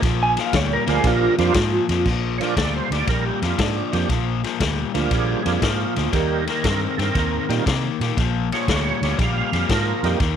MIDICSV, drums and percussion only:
0, 0, Header, 1, 2, 480
1, 0, Start_track
1, 0, Tempo, 508906
1, 20, Time_signature, 4, 2, 24, 8
1, 9775, End_track
2, 0, Start_track
2, 0, Title_t, "Drums"
2, 23, Note_on_c, 9, 36, 87
2, 27, Note_on_c, 9, 51, 88
2, 37, Note_on_c, 9, 38, 34
2, 117, Note_off_c, 9, 36, 0
2, 121, Note_off_c, 9, 51, 0
2, 131, Note_off_c, 9, 38, 0
2, 346, Note_on_c, 9, 51, 61
2, 356, Note_on_c, 9, 38, 34
2, 441, Note_off_c, 9, 51, 0
2, 450, Note_off_c, 9, 38, 0
2, 499, Note_on_c, 9, 51, 82
2, 502, Note_on_c, 9, 36, 88
2, 509, Note_on_c, 9, 38, 109
2, 594, Note_off_c, 9, 51, 0
2, 596, Note_off_c, 9, 36, 0
2, 603, Note_off_c, 9, 38, 0
2, 825, Note_on_c, 9, 51, 62
2, 834, Note_on_c, 9, 38, 36
2, 919, Note_off_c, 9, 51, 0
2, 928, Note_off_c, 9, 38, 0
2, 979, Note_on_c, 9, 51, 81
2, 980, Note_on_c, 9, 36, 83
2, 988, Note_on_c, 9, 38, 36
2, 1073, Note_off_c, 9, 51, 0
2, 1074, Note_off_c, 9, 36, 0
2, 1083, Note_off_c, 9, 38, 0
2, 1306, Note_on_c, 9, 51, 56
2, 1315, Note_on_c, 9, 38, 35
2, 1400, Note_off_c, 9, 51, 0
2, 1410, Note_off_c, 9, 38, 0
2, 1456, Note_on_c, 9, 51, 85
2, 1460, Note_on_c, 9, 36, 92
2, 1465, Note_on_c, 9, 38, 112
2, 1550, Note_off_c, 9, 51, 0
2, 1554, Note_off_c, 9, 36, 0
2, 1559, Note_off_c, 9, 38, 0
2, 1783, Note_on_c, 9, 51, 63
2, 1793, Note_on_c, 9, 38, 37
2, 1877, Note_off_c, 9, 51, 0
2, 1887, Note_off_c, 9, 38, 0
2, 1938, Note_on_c, 9, 49, 88
2, 1941, Note_on_c, 9, 36, 81
2, 1948, Note_on_c, 9, 38, 32
2, 2032, Note_off_c, 9, 49, 0
2, 2035, Note_off_c, 9, 36, 0
2, 2042, Note_off_c, 9, 38, 0
2, 2270, Note_on_c, 9, 51, 60
2, 2279, Note_on_c, 9, 38, 32
2, 2364, Note_off_c, 9, 51, 0
2, 2374, Note_off_c, 9, 38, 0
2, 2422, Note_on_c, 9, 36, 79
2, 2423, Note_on_c, 9, 51, 82
2, 2432, Note_on_c, 9, 38, 107
2, 2516, Note_off_c, 9, 36, 0
2, 2517, Note_off_c, 9, 51, 0
2, 2526, Note_off_c, 9, 38, 0
2, 2753, Note_on_c, 9, 51, 61
2, 2763, Note_on_c, 9, 38, 33
2, 2848, Note_off_c, 9, 51, 0
2, 2857, Note_off_c, 9, 38, 0
2, 2899, Note_on_c, 9, 51, 82
2, 2901, Note_on_c, 9, 36, 79
2, 2909, Note_on_c, 9, 38, 32
2, 2994, Note_off_c, 9, 51, 0
2, 2995, Note_off_c, 9, 36, 0
2, 3003, Note_off_c, 9, 38, 0
2, 3230, Note_on_c, 9, 51, 60
2, 3239, Note_on_c, 9, 38, 34
2, 3324, Note_off_c, 9, 51, 0
2, 3333, Note_off_c, 9, 38, 0
2, 3381, Note_on_c, 9, 36, 83
2, 3382, Note_on_c, 9, 51, 84
2, 3391, Note_on_c, 9, 38, 107
2, 3475, Note_off_c, 9, 36, 0
2, 3476, Note_off_c, 9, 51, 0
2, 3486, Note_off_c, 9, 38, 0
2, 3708, Note_on_c, 9, 51, 62
2, 3718, Note_on_c, 9, 38, 32
2, 3803, Note_off_c, 9, 51, 0
2, 3812, Note_off_c, 9, 38, 0
2, 3862, Note_on_c, 9, 36, 83
2, 3863, Note_on_c, 9, 51, 77
2, 3872, Note_on_c, 9, 38, 32
2, 3956, Note_off_c, 9, 36, 0
2, 3957, Note_off_c, 9, 51, 0
2, 3967, Note_off_c, 9, 38, 0
2, 4190, Note_on_c, 9, 51, 56
2, 4200, Note_on_c, 9, 38, 34
2, 4285, Note_off_c, 9, 51, 0
2, 4294, Note_off_c, 9, 38, 0
2, 4342, Note_on_c, 9, 36, 74
2, 4342, Note_on_c, 9, 51, 80
2, 4352, Note_on_c, 9, 38, 103
2, 4436, Note_off_c, 9, 36, 0
2, 4437, Note_off_c, 9, 51, 0
2, 4446, Note_off_c, 9, 38, 0
2, 4666, Note_on_c, 9, 51, 60
2, 4676, Note_on_c, 9, 38, 31
2, 4761, Note_off_c, 9, 51, 0
2, 4770, Note_off_c, 9, 38, 0
2, 4819, Note_on_c, 9, 51, 77
2, 4821, Note_on_c, 9, 36, 83
2, 4828, Note_on_c, 9, 38, 32
2, 4913, Note_off_c, 9, 51, 0
2, 4915, Note_off_c, 9, 36, 0
2, 4923, Note_off_c, 9, 38, 0
2, 5147, Note_on_c, 9, 51, 60
2, 5156, Note_on_c, 9, 38, 33
2, 5241, Note_off_c, 9, 51, 0
2, 5251, Note_off_c, 9, 38, 0
2, 5301, Note_on_c, 9, 36, 79
2, 5301, Note_on_c, 9, 51, 81
2, 5310, Note_on_c, 9, 38, 109
2, 5395, Note_off_c, 9, 36, 0
2, 5395, Note_off_c, 9, 51, 0
2, 5405, Note_off_c, 9, 38, 0
2, 5624, Note_on_c, 9, 51, 60
2, 5633, Note_on_c, 9, 38, 34
2, 5718, Note_off_c, 9, 51, 0
2, 5728, Note_off_c, 9, 38, 0
2, 5781, Note_on_c, 9, 36, 83
2, 5782, Note_on_c, 9, 51, 79
2, 5792, Note_on_c, 9, 38, 33
2, 5876, Note_off_c, 9, 36, 0
2, 5876, Note_off_c, 9, 51, 0
2, 5886, Note_off_c, 9, 38, 0
2, 6106, Note_on_c, 9, 51, 59
2, 6116, Note_on_c, 9, 38, 31
2, 6201, Note_off_c, 9, 51, 0
2, 6210, Note_off_c, 9, 38, 0
2, 6262, Note_on_c, 9, 51, 81
2, 6263, Note_on_c, 9, 36, 80
2, 6272, Note_on_c, 9, 38, 106
2, 6357, Note_off_c, 9, 36, 0
2, 6357, Note_off_c, 9, 51, 0
2, 6366, Note_off_c, 9, 38, 0
2, 6595, Note_on_c, 9, 51, 60
2, 6605, Note_on_c, 9, 38, 34
2, 6689, Note_off_c, 9, 51, 0
2, 6699, Note_off_c, 9, 38, 0
2, 6744, Note_on_c, 9, 36, 78
2, 6746, Note_on_c, 9, 51, 76
2, 6755, Note_on_c, 9, 38, 33
2, 6839, Note_off_c, 9, 36, 0
2, 6840, Note_off_c, 9, 51, 0
2, 6849, Note_off_c, 9, 38, 0
2, 7076, Note_on_c, 9, 51, 65
2, 7086, Note_on_c, 9, 38, 33
2, 7171, Note_off_c, 9, 51, 0
2, 7180, Note_off_c, 9, 38, 0
2, 7227, Note_on_c, 9, 36, 80
2, 7231, Note_on_c, 9, 51, 87
2, 7241, Note_on_c, 9, 38, 101
2, 7322, Note_off_c, 9, 36, 0
2, 7326, Note_off_c, 9, 51, 0
2, 7335, Note_off_c, 9, 38, 0
2, 7556, Note_on_c, 9, 51, 63
2, 7566, Note_on_c, 9, 38, 32
2, 7651, Note_off_c, 9, 51, 0
2, 7660, Note_off_c, 9, 38, 0
2, 7708, Note_on_c, 9, 36, 82
2, 7712, Note_on_c, 9, 51, 79
2, 7721, Note_on_c, 9, 38, 34
2, 7803, Note_off_c, 9, 36, 0
2, 7806, Note_off_c, 9, 51, 0
2, 7815, Note_off_c, 9, 38, 0
2, 8038, Note_on_c, 9, 51, 60
2, 8047, Note_on_c, 9, 38, 32
2, 8132, Note_off_c, 9, 51, 0
2, 8141, Note_off_c, 9, 38, 0
2, 8187, Note_on_c, 9, 36, 77
2, 8188, Note_on_c, 9, 51, 76
2, 8197, Note_on_c, 9, 38, 103
2, 8281, Note_off_c, 9, 36, 0
2, 8282, Note_off_c, 9, 51, 0
2, 8292, Note_off_c, 9, 38, 0
2, 8514, Note_on_c, 9, 51, 58
2, 8524, Note_on_c, 9, 38, 33
2, 8609, Note_off_c, 9, 51, 0
2, 8618, Note_off_c, 9, 38, 0
2, 8666, Note_on_c, 9, 36, 84
2, 8667, Note_on_c, 9, 51, 74
2, 8676, Note_on_c, 9, 38, 34
2, 8760, Note_off_c, 9, 36, 0
2, 8761, Note_off_c, 9, 51, 0
2, 8771, Note_off_c, 9, 38, 0
2, 8990, Note_on_c, 9, 51, 54
2, 8999, Note_on_c, 9, 38, 32
2, 9084, Note_off_c, 9, 51, 0
2, 9093, Note_off_c, 9, 38, 0
2, 9143, Note_on_c, 9, 36, 85
2, 9143, Note_on_c, 9, 51, 79
2, 9152, Note_on_c, 9, 38, 102
2, 9237, Note_off_c, 9, 36, 0
2, 9237, Note_off_c, 9, 51, 0
2, 9247, Note_off_c, 9, 38, 0
2, 9467, Note_on_c, 9, 51, 57
2, 9476, Note_on_c, 9, 38, 32
2, 9561, Note_off_c, 9, 51, 0
2, 9571, Note_off_c, 9, 38, 0
2, 9620, Note_on_c, 9, 51, 72
2, 9621, Note_on_c, 9, 36, 80
2, 9629, Note_on_c, 9, 38, 33
2, 9714, Note_off_c, 9, 51, 0
2, 9715, Note_off_c, 9, 36, 0
2, 9724, Note_off_c, 9, 38, 0
2, 9775, End_track
0, 0, End_of_file